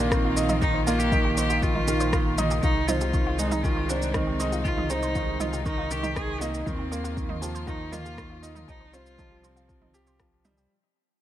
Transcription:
Already playing: A#1 D#3 A#3 D4 D#4 F4
0.11 D#3 C4 C5, kick, cross-stick, shaker
0.24 F4
0.36 D#4, shaker
0.49 D#4, mid tom, shaker
0.61 D#3 D#4 G4, kick, shaker
0.74 C5
0.87 A#3 F4, shaker
0.99 G4, shaker
1.12 D#3 D#4, kick, mid tom, shaker
1.25 G4
1.37 D#4 G4 C5, shaker
1.50 F4, shaker
1.62 D#3 F4, kick, shaker
1.75 D#4, mid tom
1.87 D#3 G4, shaker
2.00 C5, shaker
2.13 D#3 F4, kick, cross-stick, shaker
2.38 D#4, mid tom, shaker
2.51 G4, shaker
2.63 C2 C3 D#3 G#3 D#4 F4, kick, shaker
2.88 C4 D#4 F4, mid tom, shaker
3.01 G4, shaker
3.14 D#3 C5, kick, shaker
3.27 F4
3.38 G#3 D#4, shaker
3.52 D#4, mid tom, shaker
3.63 D#3 F4 G4, kick, shaker
3.77 C5
3.89 C4 D4 F4, shaker
4.02 shaker
4.14 D#3 C4 D#4, kick, cross-stick, mid tom, shaker
4.27 G4
4.40 D#4 C5, shaker
4.52 F4, shaker
4.65 D#3 F4, kick, shaker
4.77 D#4, mid tom
4.90 C4 D#4 G4, shaker
5.03 C5, shaker
5.15 D#3 F4, kick, shaker
5.40 D#4 F4, mid tom, shaker
5.53 G4, shaker
5.66 D#3 D#4 C5, kick, shaker
5.78 F4
5.91 D#3 G4, shaker
6.03 D#4, mid tom, shaker
6.15 D#3 G4 G#4, kick, cross-stick, shaker
6.28 C5
6.41 A#3 D#4 F4, shaker
6.54 shaker
6.66 D#2 D#3 A#3 C4 D#4 F4, kick, mid tom, shaker
6.79 G4
6.91 A#3 C5, shaker
7.04 F4, shaker
7.17 D#3, kick, shaker
7.29 D#4, mid tom
7.42 F3 G4, shaker
7.55 C5, shaker
7.67 D#3 D#4 F4, kick, shaker
7.92 A#3 D#4 F4, mid tom, shaker
8.05 G4, shaker
8.17 D#3 C5, kick, cross-stick, shaker
8.30 F4
8.43 D#4, shaker
8.55 D#4, mid tom, shaker
8.68 C2 C3 F3 G3 D#4 G4, kick, shaker
8.80 C5
8.93 C4 F4, shaker
9.06 shaker
9.18 F3 D#4, kick, mid tom, shaker
9.31 G4
9.43 C4 F4 C5, shaker
9.56 F4, shaker
9.69 F3, kick, shaker
9.82 D#4, mid tom
9.94 G4, shaker
10.07 C5, shaker
10.19 F3 F4, kick, cross-stick, shaker
10.45 G3 D#4, mid tom, shaker
10.57 G4, shaker

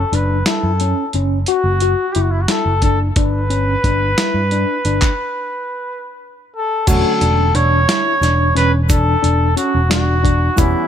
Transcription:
Already playing: A4
0.12 F#1 D4 B4, closed hi-hat
0.46 E4 A4, snare, closed hi-hat
0.64 F#2
0.80 C#4, closed hi-hat
1.13 F#1 C#4, closed hi-hat
1.46 F#4, closed hi-hat
1.51 F#4
1.64 F#1
1.80 F#4, closed hi-hat
2.12 F#1 E4 G4, closed hi-hat
2.21 F#4
2.31 E4
2.41 F#4
2.48 E4 A4, snare, closed hi-hat
2.66 F#1
2.82 D4 A4, kick, closed hi-hat
3.16 G1 D4 B4, kick, closed hi-hat
3.50 C#4, closed hi-hat
3.84 G1 D4, kick, closed hi-hat
4.18 E4, snare, closed hi-hat
4.34 G2
4.51 D4, closed hi-hat
4.85 G1 D4, closed hi-hat
5.02 kick, clap
6.56 A4
6.87 E1 D3 F#3 A3 C#4 F#4 A4, kick, closed hi-hat, crash, shaker
7.21 E1 D4, closed hi-hat
7.54 E1 D4 C#5, closed hi-hat
7.89 E4, snare, closed hi-hat, shaker
8.21 E1 D4, snare, closed hi-hat, shaker
8.55 E1 C#4 B4, snare, closed hi-hat
8.89 D4 A4, kick, closed hi-hat, shaker
9.23 E1 D4, closed hi-hat
9.57 C#4 F#4, closed hi-hat, shaker
9.75 E1
9.90 D4 F#4, snare, closed hi-hat
10.24 D4, kick, closed hi-hat
10.56 E1 E3 G3 B3 C#4 E4, kick, closed hi-hat, shaker

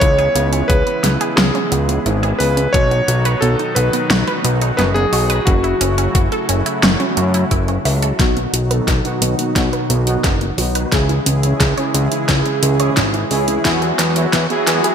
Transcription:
Already playing: C#3 E3 G#3 B3 E4
0.00 C#2 E4 C#5, kick, closed hi-hat
0.18 G#4, closed hi-hat
0.35 C#2 B3, closed hi-hat
0.53 C#4, closed hi-hat
0.68 C#2 B3 B4, kick, closed hi-hat
0.87 B3, closed hi-hat
1.04 C#2 E4, snare, closed hi-hat
1.21 G#4, closed hi-hat
1.36 C#2 B3 G#4, snare, closed hi-hat
1.55 C#4, closed hi-hat
1.72 C#2 B3, closed hi-hat
1.89 B3, closed hi-hat
2.06 G#1 E4, closed hi-hat
2.23 G#4, closed hi-hat
2.39 C#2 B3 B4, open hi-hat
2.57 C#4, closed hi-hat
2.73 B1 B2 D#3 F#3 B3 D#4 F#4 C#5, kick, closed hi-hat
2.91 B3, closed hi-hat
3.08 B1 F#4, closed hi-hat
3.25 B4, closed hi-hat
3.41 B1 B3 A4, closed hi-hat
3.59 D#4, closed hi-hat
3.75 B1 B3 B4, closed hi-hat
3.93 B3, closed hi-hat
4.10 B1 F#4, snare, closed hi-hat
4.27 B4, closed hi-hat
4.45 B1 B3, closed hi-hat
4.62 D#4, closed hi-hat
4.77 F#1 B3 B4, snare, closed hi-hat
4.94 B3 G#4, closed hi-hat
5.13 B1 F#4, open hi-hat
5.30 B4, closed hi-hat
5.45 F#1 C#3 A3 C#4 E4 F#4, kick, closed hi-hat
5.64 E4, closed hi-hat
5.81 F#1 C#4, closed hi-hat
5.98 C#4, closed hi-hat
6.15 F#1 F#4, kick, closed hi-hat
6.32 A4, closed hi-hat
6.49 F#1 C#4, closed hi-hat
6.66 E4, closed hi-hat
6.83 F#1 C#4, snare, closed hi-hat
7.00 C#4, closed hi-hat
7.17 F#2 F#4, closed hi-hat
7.34 E4, closed hi-hat
7.51 F#1 E4, kick, closed hi-hat
7.68 C#4, closed hi-hat
7.85 C#2 E5, open hi-hat
8.02 A4, closed hi-hat
8.19 B1 B2 D#3 F#3 B3 D#4 F#4, kick, snare, closed hi-hat
8.37 B3, closed hi-hat
8.53 B1 F#4, closed hi-hat
8.71 B2 B3 D#4 A4 B4, closed hi-hat
8.88 B1 B3, kick, snare, closed hi-hat
9.05 B2 B3 D#4 F#4, closed hi-hat
9.22 B1 B3, closed hi-hat
9.39 B3, closed hi-hat
9.56 B1 B2 B3 D#4 F#4, kick, snare, closed hi-hat
9.73 B4, closed hi-hat
9.90 B1 B3, closed hi-hat
10.07 B2 B3 D#4 F#4, closed hi-hat
10.24 F#1 B3, kick, snare, closed hi-hat
10.41 B3, closed hi-hat
10.58 B1 B3 D#4 F#4, open hi-hat
10.75 B4, closed hi-hat
10.92 C#2 C#3 E3 G#3 C#4 E4 G#4, kick, snare, closed hi-hat
11.09 E4, closed hi-hat
11.26 C#2 C#4, closed hi-hat
11.43 C#3 C#4 E4 C#5, closed hi-hat
11.60 C#2 G#4, kick, snare, closed hi-hat
11.78 C#3 C#4 E4 G#4 C#5, closed hi-hat
11.94 C#2 C#4, closed hi-hat
12.12 E4, closed hi-hat
12.29 C#2 C#3 C#4 E4 G#4, kick, snare, closed hi-hat
12.46 C#4, closed hi-hat
12.63 C#2 G#4, closed hi-hat
12.80 C#3 C#4 E4 G#4 C#5, closed hi-hat
12.97 G#1 C#4, kick, snare, closed hi-hat
13.14 E4, closed hi-hat
13.31 C#2 C#4 E4 G#4, open hi-hat
13.48 C#4, closed hi-hat
13.65 E2 E3 F#3 G#3 B3 E4 F#4 G#4, kick, snare, closed hi-hat
13.82 G#4, closed hi-hat
13.99 E2 B3, snare, closed hi-hat
14.16 E3 E4 F#4 C#5, closed hi-hat
14.33 E2 B3, kick, snare, closed hi-hat
14.50 E3 B3 E4 F#4 G#4, closed hi-hat
14.67 E2 F#4, snare, closed hi-hat
14.84 G#4, closed hi-hat

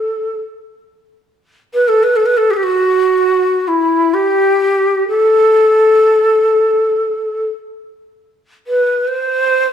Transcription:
Already playing: A4
1.73 B4
1.88 A4
2.03 B4
2.15 A4
2.25 B4
2.37 A4
2.50 G4 A4
2.56 G4
2.63 F#4
3.67 E4
4.13 G4
5.08 A4
8.66 B4
9.07 C5

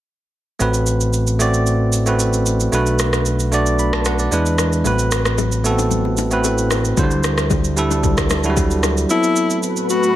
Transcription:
0.59 A1 A3 C4 F#4 B4, shaker
0.74 shaker
0.87 shaker
1.01 shaker
1.13 shaker
1.27 shaker
1.39 A3 C4 F#4 D5, shaker
1.54 shaker
1.67 shaker
1.93 shaker
2.06 A3 C4 F#4 B4, shaker
2.20 shaker
2.33 shaker
2.46 shaker
2.60 shaker
2.72 B1 A3 D4 F#4 B4, shaker
2.86 shaker
2.99 cross-stick, shaker
3.13 cross-stick, shaker
3.26 shaker
3.40 shaker
3.52 A3 D4 F#4 D5, shaker
3.66 shaker
3.79 B5, shaker
3.93 A5, cross-stick
4.05 F#5, cross-stick, shaker
4.19 D5, shaker
4.31 E2 G#3 D4 E4 B4, shaker
4.46 shaker
4.58 cross-stick, shaker
4.73 shaker
4.84 A1 A3 B3 F#4 B4, low conga, shaker
4.92 C4
4.99 shaker
5.12 cross-stick, shaker
5.25 cross-stick, shaker
5.38 high bongo, low conga, shaker
5.52 shaker
5.64 A3 B3 F#4 A4, shaker
5.71 C4
5.79 low bongo, shaker
5.91 low conga, shaker
6.05 high bongo
6.17 low bongo, shaker
6.31 A3 C4 F#4 B4, shaker
6.44 high bongo, shaker
6.58 shaker
6.71 cross-stick, low bongo, shaker
6.85 shaker
6.97 D2 F#3 D4 E4 C5, kick, low conga, shaker
7.03 G3
7.11 shaker
7.24 cross-stick, low bongo, shaker
7.38 cross-stick, shaker
7.50 kick, high bongo, low conga, shaker
7.64 shaker
7.76 G3 D4 E4 A4, shaker
7.91 low bongo, shaker
8.03 kick, low conga, shaker
8.17 kick, cross-stick, high bongo, shaker
8.30 cross-stick, low bongo, shaker
8.43 F#3 D4 E4 F#4, shaker
8.50 G3
8.57 kick, high bongo, shaker
8.71 shaker
8.83 cross-stick, low bongo, shaker
8.97 shaker
9.09 F#3 A3 B3 C4 E4 F#4 A4 B4 B5, shaker
9.23 shaker
9.36 shaker
9.50 shaker
9.63 shaker
9.77 shaker
9.90 F#4, shaker
10.03 shaker

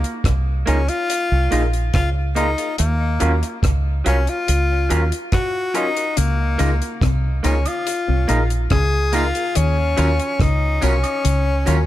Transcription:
Already playing: A#3
0.04 closed hi-hat
0.24 C2, kick, cross-stick, closed hi-hat
0.66 C#2 A#3 C#4 D#4 F4 G#4 A#4, closed hi-hat
0.89 F4, closed hi-hat
1.10 closed hi-hat
1.32 C2
1.51 A#1 A#3 D#4 F4 G#4 A#4, closed hi-hat
1.73 closed hi-hat
1.94 C#2 F4, kick, cross-stick, closed hi-hat
2.35 A#3 D#4 F4 G#4 A#4, closed hi-hat
2.58 G#4 A#4, closed hi-hat
2.78 D#2 A#3, closed hi-hat
3.20 D#2 F#3 C#4 F4 F#4 A#4, closed hi-hat
3.43 closed hi-hat
3.63 C#2, kick, cross-stick, closed hi-hat
4.05 C2 F#3 C#4 F4 F#4 A#4, closed hi-hat
4.27 F4, closed hi-hat
4.48 C#2, closed hi-hat
4.89 D#2 F#3 C#4 F4 F#4 A#4, closed hi-hat
5.12 closed hi-hat
5.32 F#4, kick, cross-stick, closed hi-hat
5.74 F#3 C#4 D#4 F4 F#4 A#4, closed hi-hat
5.97 F#4 A#4, closed hi-hat
6.17 C#2 C#3 A#3, closed hi-hat
6.58 C#2 C#3 A#3 D#4 F4 G#4 A#4, closed hi-hat, tambourine
6.82 closed hi-hat
7.01 C2 C3, kick, cross-stick, closed hi-hat
7.43 C#2 C#3 A#3 C#4 D#4 F4 G#4 A#4, closed hi-hat, tambourine
7.65 F4, closed hi-hat, high woodblock
7.87 closed hi-hat
8.08 C2 C3
8.28 A#1 A#2 A#3 D#4 F4 G#4 A#4, closed hi-hat, tambourine
8.50 closed hi-hat
8.70 C#2 C#3 G#4, kick, cross-stick, closed hi-hat
9.12 A#3 D#4 F4 G#4 A#4, closed hi-hat, tambourine
9.35 G#4 A#4, closed hi-hat
9.55 D#2 D#3 C#4, closed hi-hat
9.97 D#2 D#3 F#3 C#4 F4 F#4 A#4, closed hi-hat, tambourine
10.20 closed hi-hat
10.40 C#2 C#3 D#4, kick, cross-stick, closed hi-hat
10.81 C2 C3 F#3 C#4 F4 F#4 A#4, closed hi-hat, tambourine
11.03 closed hi-hat, high woodblock
11.24 C#2 C#3, closed hi-hat
11.66 D#2 D#3 F#3 C#4 F4 F#4 A#4, closed hi-hat, tambourine

